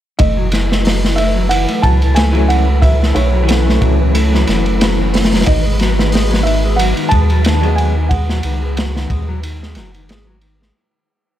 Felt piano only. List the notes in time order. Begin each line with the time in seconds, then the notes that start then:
0.19 D#5
1.16 E5
1.49 F#5
1.82 A5
2.15 G#5
2.48 F#5
2.82 E5
3.15 C#5
5.47 D#5
6.43 E5
6.76 F#5
7.09 A5
7.76 G#5
8.09 F#5